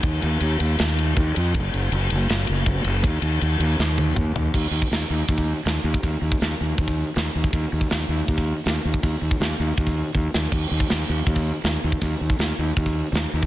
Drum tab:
CC |----------------|----------------|----------------|x---------------|
RD |x-x-x-x-x-x-x-x-|x-x-x-x-x-x-x-x-|x-x-x-x---------|----------------|
HH |----------------|----------------|----------------|----o---o---o---|
SD |--------o-------|--------o-------|--------o-------|----o-------o---|
T1 |----------------|----------------|----------o-----|----------------|
T2 |----------------|----------------|------------o---|----------------|
FT |----------------|----------------|--------------o-|----------------|
BD |o-----------o---|o-----------o---|o-----------o---|o--o----oo-----o|

CC |----------------|----------------|----------------|x---------------|
RD |----------------|----------------|----------------|----------------|
HH |o---o---o---o---|o---o---o---o---|o---o---o-------|----o---o---o---|
SD |----o-------o---|----o-------o---|----o---------o-|----o-------o---|
T1 |----------------|----------------|----------------|----------------|
T2 |----------------|----------------|----------------|----------------|
FT |----------------|----------------|----------------|----------------|
BD |o--o----oo-----o|o--o----oo-----o|o--o----oo--o---|o--o----oo-----o|

CC |----------------|
RD |----------------|
HH |o---o---o---o---|
SD |----o-------o---|
T1 |----------------|
T2 |----------------|
FT |----------------|
BD |o--o----oo-----o|